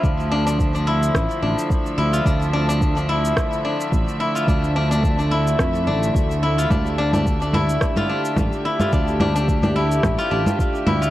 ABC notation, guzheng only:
X:1
M:4/4
L:1/16
Q:"Swing 16ths" 1/4=108
K:Dm
V:1 name="Guzheng"
D2 D D2 D E4 D z3 E F | D2 D D2 D E4 D z3 E F | D2 D D2 D E4 D z3 E F | D2 D D2 D E3 F D z3 E F |
D2 D D2 D E3 F D z3 E F |]